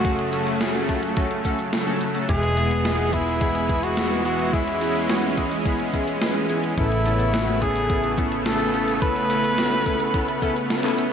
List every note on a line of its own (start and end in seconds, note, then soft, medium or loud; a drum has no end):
0.00 2.26 F#1 medium
0.00 2.25 C#3 medium
0.00 2.25 F#3 medium
0.00 2.25 A3 medium
0.00 0.29 F#4 loud
0.05 0.29 A3 medium
0.05 0.29 C#4 medium
0.05 0.29 F#4 medium
0.05 0.29 A4 medium
0.05 kick loud
0.05 closed hi-hat medium
0.05 cabasa soft
0.19 closed hi-hat soft
0.33 0.58 A3 medium
0.33 0.58 C#4 medium
0.33 0.58 F#4 medium
0.33 0.58 A4 loud
0.33 closed hi-hat medium
0.33 cabasa medium
0.47 closed hi-hat soft
0.47 cabasa soft
0.61 0.86 A3 medium
0.61 0.86 C#4 medium
0.61 0.86 F#4 medium
0.61 0.86 G#4 loud
0.61 snare loud
0.61 closed hi-hat medium
0.61 cabasa soft
0.75 closed hi-hat soft
0.89 1.14 A3 medium
0.89 1.14 C#4 medium
0.89 1.14 F#4 medium
0.89 1.14 A4 medium
0.89 kick medium
0.89 snare soft
0.89 closed hi-hat medium
0.89 cabasa medium
1.03 closed hi-hat soft
1.03 cabasa soft
1.17 1.42 A3 medium
1.17 1.42 C#4 medium
1.17 1.42 F#4 medium
1.17 1.42 A4 loud
1.17 kick loud
1.17 closed hi-hat medium
1.17 cabasa soft
1.31 closed hi-hat soft
1.45 1.57 A3 loud
1.45 1.57 C#4 medium
1.45 1.57 F#4 medium
1.45 1.57 A4 loud
1.45 kick medium
1.45 closed hi-hat soft
1.45 cabasa medium
1.59 closed hi-hat soft
1.59 cabasa soft
1.73 snare loud
1.73 closed hi-hat medium
1.73 cabasa soft
1.87 2.06 A3 loud
1.87 2.06 C#4 medium
1.87 2.06 F#4 medium
1.87 2.06 A4 loud
1.87 closed hi-hat soft
2.01 closed hi-hat medium
2.01 cabasa medium
2.15 2.26 A3 medium
2.15 2.26 C#4 medium
2.15 2.26 F#4 medium
2.15 2.26 A4 loud
2.15 closed hi-hat soft
2.15 cabasa soft
2.29 6.75 E1 medium
2.29 6.74 E3 medium
2.29 2.54 G#3 medium
2.29 6.74 G#3 medium
2.29 2.54 B3 medium
2.29 4.51 B3 medium
2.29 2.54 E4 medium
2.29 2.54 G#4 medium
2.29 3.14 G#4 loud
2.29 kick loud
2.29 closed hi-hat medium
2.29 cabasa soft
2.43 closed hi-hat soft
2.57 2.82 G#3 medium
2.57 2.82 B3 medium
2.57 2.82 E4 medium
2.57 2.82 G#4 medium
2.57 closed hi-hat medium
2.57 cabasa medium
2.71 closed hi-hat soft
2.71 cabasa soft
2.85 3.10 G#3 medium
2.85 3.10 B3 medium
2.85 3.10 E4 medium
2.85 3.10 F#4 loud
2.85 snare loud
2.85 closed hi-hat medium
2.85 cabasa soft
2.99 closed hi-hat soft
3.13 3.38 G#3 medium
3.13 3.38 B3 medium
3.13 3.85 E4 loud
3.13 3.38 E4 medium
3.13 3.38 G#4 medium
3.13 kick medium
3.13 closed hi-hat medium
3.13 cabasa medium
3.27 closed hi-hat soft
3.27 cabasa soft
3.41 3.66 G#3 medium
3.41 3.66 B3 medium
3.41 3.66 E4 medium
3.41 3.66 G#4 loud
3.41 kick loud
3.41 closed hi-hat medium
3.41 cabasa soft
3.55 closed hi-hat soft
3.69 3.94 G#3 medium
3.69 3.94 B3 medium
3.69 3.94 E4 medium
3.69 3.94 G#4 medium
3.69 kick loud
3.69 closed hi-hat soft
3.69 cabasa medium
3.83 4.25 F#4 loud
3.83 closed hi-hat soft
3.83 cabasa soft
3.97 4.22 G#3 medium
3.97 4.22 B3 medium
3.97 4.22 E4 medium
3.97 4.22 G#4 medium
3.97 snare loud
3.97 closed hi-hat medium
3.97 cabasa soft
4.11 closed hi-hat soft
4.25 4.50 G#3 medium
4.25 4.50 B3 medium
4.25 4.50 E4 medium
4.25 4.55 F#4 medium
4.25 4.50 G#4 medium
4.25 closed hi-hat medium
4.25 cabasa medium
4.39 closed hi-hat soft
4.39 cabasa soft
4.53 4.78 G#3 medium
4.53 4.78 B3 medium
4.53 6.75 C#4 medium
4.53 5.37 E4 medium
4.53 4.78 E4 medium
4.53 4.78 G#4 medium
4.53 kick loud
4.53 closed hi-hat medium
4.53 cabasa soft
4.67 closed hi-hat soft
4.81 5.06 G#3 medium
4.81 5.06 B3 medium
4.81 5.06 E4 medium
4.81 5.06 G#4 loud
4.81 closed hi-hat medium
4.81 cabasa medium
4.95 closed hi-hat soft
4.95 cabasa soft
5.09 5.34 G#3 medium
5.09 5.34 B3 medium
5.09 5.34 E4 medium
5.09 5.34 F#4 loud
5.09 snare loud
5.09 closed hi-hat medium
5.09 cabasa soft
5.23 closed hi-hat soft
5.37 5.62 G#3 medium
5.37 5.62 B3 medium
5.37 5.62 E4 medium
5.37 5.62 G#4 medium
5.37 kick medium
5.37 snare soft
5.37 closed hi-hat medium
5.37 cabasa medium
5.51 closed hi-hat soft
5.51 cabasa soft
5.66 5.90 G#3 medium
5.66 5.90 B3 medium
5.66 5.90 E4 medium
5.66 5.90 G#4 loud
5.66 kick loud
5.66 closed hi-hat medium
5.66 cabasa soft
5.80 closed hi-hat soft
5.94 6.18 G#3 medium
5.94 6.18 B3 medium
5.94 6.18 E4 medium
5.94 6.18 G#4 medium
5.94 kick medium
5.94 closed hi-hat soft
5.94 cabasa medium
6.08 closed hi-hat soft
6.08 cabasa soft
6.22 6.46 G#3 medium
6.22 6.46 B3 medium
6.22 6.46 E4 medium
6.22 6.46 G#4 medium
6.22 snare loud
6.22 closed hi-hat medium
6.22 cabasa soft
6.36 closed hi-hat soft
6.50 6.74 G#3 medium
6.50 6.74 B3 medium
6.50 6.74 E4 medium
6.50 6.74 G#4 medium
6.50 closed hi-hat medium
6.50 cabasa medium
6.64 closed hi-hat soft
6.64 cabasa soft
6.78 11.13 A1 medium
6.78 11.13 A3 medium
6.78 11.13 B3 medium
6.78 7.02 B3 medium
6.78 7.02 C#4 medium
6.78 7.02 E4 medium
6.78 7.63 E4 loud
6.78 7.02 A4 medium
6.78 kick loud
6.78 closed hi-hat medium
6.78 cabasa soft
6.92 closed hi-hat soft
7.06 7.30 B3 medium
7.06 7.31 C#4 medium
7.06 7.30 E4 medium
7.06 7.30 A4 medium
7.06 closed hi-hat medium
7.06 cabasa medium
7.20 closed hi-hat soft
7.20 cabasa soft
7.34 7.58 B3 medium
7.34 7.58 C#4 medium
7.34 7.58 E4 medium
7.34 7.58 F#4 loud
7.34 snare loud
7.34 closed hi-hat medium
7.34 cabasa soft
7.48 closed hi-hat soft
7.62 7.86 B3 medium
7.62 7.86 C#4 medium
7.62 7.86 E4 medium
7.62 8.18 G#4 loud
7.62 7.86 A4 medium
7.62 kick medium
7.62 closed hi-hat medium
7.62 cabasa medium
7.76 closed hi-hat soft
7.76 cabasa soft
7.90 8.15 B3 medium
7.90 8.14 C#4 medium
7.90 8.15 E4 medium
7.90 8.15 A4 loud
7.90 kick loud
7.90 closed hi-hat medium
7.90 cabasa soft
8.04 closed hi-hat soft
8.18 8.43 B3 medium
8.18 8.43 C#4 medium
8.18 8.43 E4 medium
8.18 8.43 A4 medium
8.18 kick loud
8.18 closed hi-hat soft
8.18 cabasa medium
8.32 closed hi-hat soft
8.32 cabasa soft
8.46 8.71 B3 medium
8.46 8.71 C#4 medium
8.46 8.71 E4 medium
8.46 8.71 A4 medium
8.46 8.98 A4 loud
8.46 snare loud
8.46 closed hi-hat medium
8.46 cabasa soft
8.60 closed hi-hat soft
8.74 8.99 B3 medium
8.74 8.99 C#4 medium
8.74 8.99 E4 medium
8.74 8.99 A4 medium
8.74 closed hi-hat medium
8.74 cabasa medium
8.88 closed hi-hat soft
8.88 cabasa soft
9.02 9.27 B3 medium
9.02 9.27 C#4 medium
9.02 9.27 E4 medium
9.02 9.27 A4 medium
9.02 10.66 B4 loud
9.02 kick loud
9.02 closed hi-hat medium
9.02 cabasa soft
9.16 closed hi-hat soft
9.30 9.55 B3 medium
9.30 9.55 C#4 medium
9.30 9.55 E4 medium
9.30 9.55 A4 loud
9.30 closed hi-hat medium
9.30 cabasa medium
9.44 closed hi-hat soft
9.44 cabasa soft
9.58 9.83 B3 medium
9.58 9.83 C#4 medium
9.58 9.83 E4 medium
9.58 9.83 F#4 loud
9.58 snare loud
9.58 closed hi-hat medium
9.58 cabasa soft
9.72 closed hi-hat soft
9.86 10.11 B3 medium
9.86 10.11 C#4 medium
9.86 10.11 E4 medium
9.86 10.11 A4 medium
9.86 kick medium
9.86 snare soft
9.86 closed hi-hat medium
9.86 cabasa medium
10.00 closed hi-hat soft
10.00 cabasa soft
10.14 10.39 B3 medium
10.14 10.39 C#4 medium
10.14 10.39 E4 medium
10.14 10.39 A4 medium
10.14 kick loud
10.14 closed hi-hat medium
10.14 cabasa soft
10.28 closed hi-hat soft
10.42 10.54 B3 loud
10.42 10.54 C#4 medium
10.42 10.54 E4 medium
10.42 10.54 A4 loud
10.42 kick medium
10.42 closed hi-hat soft
10.42 cabasa medium
10.56 closed hi-hat soft
10.56 cabasa soft
10.70 snare loud
10.70 closed hi-hat medium
10.70 cabasa soft
10.84 11.04 B3 loud
10.84 11.04 C#4 medium
10.84 11.04 E4 medium
10.84 11.04 A4 loud
10.84 clap medium
10.84 closed hi-hat soft
10.98 closed hi-hat medium
10.98 cabasa medium